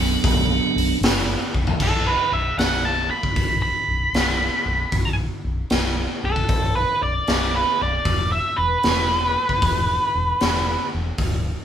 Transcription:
Already playing: tonewheel organ F#3
0.00 fingered electric bass B0, tonewheel organ B3 D4, open hi-hat
0.24 fingered electric bass B0, kick, open hi-hat
0.76 fingered electric bass B0, open hi-hat
1.01 fingered electric bass F#1, snare, open hi-hat
1.54 fingered electric bass B0, kick
1.67 floor tom
1.80 fingered electric bass B0, lead electric guitar A4, kick, crash
2.07 lead electric guitar B4
2.32 fingered electric bass B0, lead electric guitar E5
2.57 fingered electric bass B0, lead electric guitar F#5, snare, open hi-hat
2.85 lead electric guitar A5
3.11 lead electric guitar B5
3.23 kick
3.36 fingered electric bass B0, kick, open hi-hat
3.62 lead electric guitar B5
3.88 fingered electric bass B0
4.13 fingered electric bass B0, snare, open hi-hat
4.66 fingered electric bass B0
4.92 fingered electric bass B0, kick, open hi-hat
5.44 fingered electric bass B0
5.70 fingered electric bass B0, snare, open hi-hat
6.24 fingered electric bass B0, lead electric guitar A4
6.36 kick
6.49 fingered electric bass B0, kick, open hi-hat
6.75 lead electric guitar B4
7.02 fingered electric bass B0, lead electric guitar D5
7.28 fingered electric bass B0, snare, open hi-hat
7.56 lead electric guitar B4
7.81 fingered electric bass B0, lead electric guitar D5
8.05 fingered electric bass E1, kick, open hi-hat
8.32 lead electric guitar E5
8.57 fingered electric bass E1, lead electric guitar B4
8.83 fingered electric bass E1, snare, open hi-hat
9.49 kick
9.62 fingered electric bass E1, kick, open hi-hat
10.15 fingered electric bass E1
10.41 fingered electric bass E1, snare, open hi-hat
10.94 fingered electric bass E1
11.18 fingered electric bass D1, kick, open hi-hat

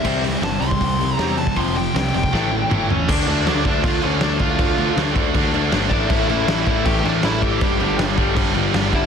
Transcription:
Already playing: lead electric guitar E5
0.04 picked electric bass C2, overdriven electric guitar C3 G3 C4, kick, crash
0.23 overdriven electric guitar C3 G3, open hi-hat
0.41 picked electric bass G1, overdriven electric guitar C3 G3, lead electric guitar A5, snare, open hi-hat
0.61 picked electric bass C2, overdriven electric guitar C3 G3, lead electric guitar C6, open hi-hat
0.71 kick
0.78 picked electric bass C2, overdriven electric guitar C3 G3, kick, open hi-hat
0.99 overdriven electric guitar C3 G3, open hi-hat
1.14 overdriven electric guitar C3 G3 C4, lead electric guitar A#5
1.19 picked electric bass E2, snare, open hi-hat
1.36 overdriven electric guitar C3 G3, lead electric guitar A5, open hi-hat
1.47 kick
1.56 picked electric bass F1, overdriven electric guitar F2 C3 F3, lead electric guitar C6, kick, open hi-hat
1.76 overdriven electric guitar F2 C3, lead electric guitar G5, open hi-hat
1.94 picked electric bass C2, overdriven electric guitar F2 C3, lead electric guitar G5, snare, open hi-hat
2.14 picked electric bass F1, overdriven electric guitar F2 C3, lead electric guitar G5, open hi-hat
2.23 kick
2.33 picked electric bass A1, overdriven electric guitar A2 E3 A3, kick, snare
2.50 overdriven electric guitar A2 E3
2.69 picked electric bass G1, overdriven electric guitar A2 E3 A3, mid tom
2.89 overdriven electric guitar A2 E3, lead electric guitar C#4 C#5, floor tom
3.08 picked electric bass D2, overdriven electric guitar D3 A3 D4, lead electric guitar D4 D5, kick, crash
3.26 picked electric bass D2, overdriven electric guitar D3 A3 D4, lead electric guitar D4 D5, crash
3.45 picked electric bass D2, overdriven electric guitar D3 A3 D4, snare, crash
3.65 picked electric bass D2, overdriven electric guitar D3 A3 D4, lead electric guitar D4 D5, kick, crash
3.82 picked electric bass D2, overdriven electric guitar D3 A3 D4, lead electric guitar F4 F5, kick, crash
4.02 picked electric bass D2, overdriven electric guitar D3 A3 D4, lead electric guitar C#4 C#5, crash
4.21 picked electric bass D2, overdriven electric guitar D3 A3 D4, lead electric guitar D4 D5, snare, crash
4.39 overdriven electric guitar D3 A3 D4, lead electric guitar F4 F5, kick, crash
4.58 picked electric bass D2, overdriven electric guitar D3 A3 D4, kick, crash
4.77 picked electric bass D2, overdriven electric guitar D3 A3 D4, crash
4.96 picked electric bass D2, overdriven electric guitar D3 A3 D4, snare, crash
5.16 picked electric bass D2, overdriven electric guitar D3 A3 D4, kick, crash
5.35 picked electric bass D2, overdriven electric guitar D3 A3 D4, kick, crash
5.53 picked electric bass D2, overdriven electric guitar D3 A3 D4, crash
5.72 picked electric bass G1, overdriven electric guitar D3 A3 D4, snare, crash
5.89 picked electric bass A1, overdriven electric guitar A2 E3 A3, lead electric guitar D4 D5, kick, crash
6.09 picked electric bass A1, overdriven electric guitar A2 E3 A3, lead electric guitar E4 E5, kick, crash
6.28 picked electric bass A1, overdriven electric guitar A2 E3 A3, lead electric guitar E4 E5, crash
6.46 picked electric bass A1, overdriven electric guitar A2 E3 A3, snare, crash
6.66 picked electric bass A1, overdriven electric guitar A2 E3 A3, lead electric guitar E4 E5, kick, crash
6.85 picked electric bass A1, overdriven electric guitar A2 E3 A3, lead electric guitar G4 G5, kick, crash
7.03 picked electric bass A1, overdriven electric guitar A2 E3 A3, lead electric guitar D4 D5, crash
7.22 picked electric bass A1, overdriven electric guitar A2 E3 A3, lead electric guitar E4 E5, snare, crash
7.41 overdriven electric guitar A2 E3 A3, lead electric guitar G4 G5, kick, crash
7.61 picked electric bass G1, overdriven electric guitar G2 D3 G3, kick, crash
7.79 picked electric bass G1, overdriven electric guitar G2 D3 G3, crash
7.98 picked electric bass G1, overdriven electric guitar G2 D3 G3, snare, crash
8.18 picked electric bass G1, overdriven electric guitar G2 D3 G3, kick, crash
8.35 picked electric bass G1, overdriven electric guitar G2 D3 G3, kick, crash
8.53 picked electric bass G1, overdriven electric guitar G2 D3 G3, crash
8.74 picked electric bass G1, overdriven electric guitar G2 D3 G3, snare, crash
8.93 overdriven electric guitar G2 D3 G3, lead electric guitar E4 E5, kick, crash

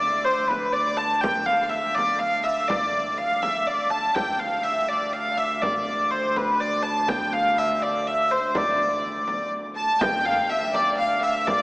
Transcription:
Already playing: viola da gamba D2, hurdy-gurdy D5
0.01 frame drum
0.24 hurdy-gurdy C5
0.48 hurdy-gurdy B4, frame drum
0.72 hurdy-gurdy D5
0.97 hurdy-gurdy A5, frame drum
1.20 hurdy-gurdy G5, frame drum
1.46 hurdy-gurdy F5, frame drum
1.63 hurdy-gurdy F5
1.69 hurdy-gurdy E5
1.95 hurdy-gurdy D5, frame drum
2.19 hurdy-gurdy F5
2.44 hurdy-gurdy E5
2.68 hurdy-gurdy D5, frame drum
3.18 hurdy-gurdy F5
3.42 hurdy-gurdy E5, frame drum
3.67 hurdy-gurdy D5, frame drum
3.90 hurdy-gurdy A5
4.15 viola da gamba D2, hurdy-gurdy G5, frame drum
4.40 hurdy-gurdy F5, frame drum
4.63 hurdy-gurdy E5
4.88 hurdy-gurdy D5
5.13 hurdy-gurdy F5
5.38 hurdy-gurdy E5, frame drum
5.62 hurdy-gurdy D5, frame drum
5.87 frame drum
6.11 hurdy-gurdy C5
6.36 hurdy-gurdy B4, frame drum
6.61 hurdy-gurdy D5
6.83 hurdy-gurdy A5, frame drum
7.08 hurdy-gurdy G5, frame drum
7.33 hurdy-gurdy F5
7.58 hurdy-gurdy E5
7.82 hurdy-gurdy D5
8.07 hurdy-gurdy E5
8.31 hurdy-gurdy C5, frame drum
8.55 hurdy-gurdy D5, frame drum
8.79 frame drum
9.04 frame drum
9.28 frame drum
9.75 fiddle A5, hurdy-gurdy A5
9.99 viola da gamba D2, fiddle G5, hurdy-gurdy G5, frame drum
10.25 hurdy-gurdy F5, frame drum
10.50 hurdy-gurdy E5, fiddle E5
10.73 fiddle D5, hurdy-gurdy D5, frame drum
10.98 fiddle F5, hurdy-gurdy F5
11.22 fiddle E5, hurdy-gurdy E5, frame drum
11.28 fiddle F5
11.35 fiddle E5
11.46 fiddle D5, hurdy-gurdy D5, frame drum

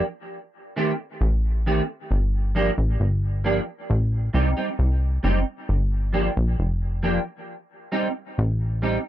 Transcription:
0.76 clean electric guitar D#3 A3 C4 G4
1.21 analog synth bass A1
1.66 clean electric guitar D#3 A3 C4 G4
2.11 analog synth bass G1
2.55 clean electric guitar F3 A#3 D4 G4
2.78 analog synth bass A1
3.00 analog synth bass G1
3.44 clean electric guitar F3 A#3 D4 G4
3.90 analog synth bass A1
4.33 analog synth bass C2, clean electric guitar G3 C4 D#4 G4
4.57 clean electric guitar G3 C4 D#4 G4
4.79 analog synth bass C2
5.23 analog synth bass F#1, clean electric guitar G3 C4 D#4 G4
5.69 analog synth bass G1
6.13 clean electric guitar F3 A#3 D4 G4
6.36 analog synth bass A#1
6.59 analog synth bass F1
7.03 clean electric guitar F3 A#3 D4 G4
7.92 clean electric guitar G3 C4 D#4 G4
8.38 analog synth bass A1
8.82 clean electric guitar G3 C4 D#4 G4

